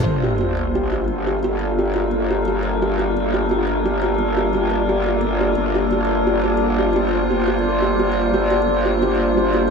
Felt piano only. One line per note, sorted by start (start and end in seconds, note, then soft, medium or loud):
0.23 0.34 G4 medium
0.41 0.52 G4 medium
0.75 0.86 G4 medium
0.92 1.03 G4 medium
1.27 1.38 G4 medium
1.44 1.55 G4 medium
1.79 1.90 G4 medium
1.96 2.07 G4 medium
2.30 2.41 G4 medium
2.48 2.59 G4 medium
2.82 2.93 G4 medium
2.99 3.10 G4 medium
3.34 3.45 G4 medium
3.51 3.62 G4 medium
3.85 3.96 G4 medium
4.03 4.14 G4 medium
4.37 4.48 G4 medium
4.54 4.65 G4 medium
4.89 5.00 G4 medium
5.06 5.17 G4 medium
5.41 5.52 G4 medium
5.75 5.86 G4 medium
5.92 6.00 G4 medium
6.27 6.38 G4 medium
6.44 6.51 G4 medium
6.79 6.90 G4 medium
6.96 7.03 G4 medium
7.30 7.41 G4 medium
7.48 7.55 G4 medium
7.82 7.93 G4 medium
7.99 8.07 G4 medium
8.34 8.45 G4 medium
8.51 8.58 G4 medium
8.85 8.97 G4 medium
9.03 9.10 G4 medium
9.37 9.48 G4 medium
9.54 9.62 G4 medium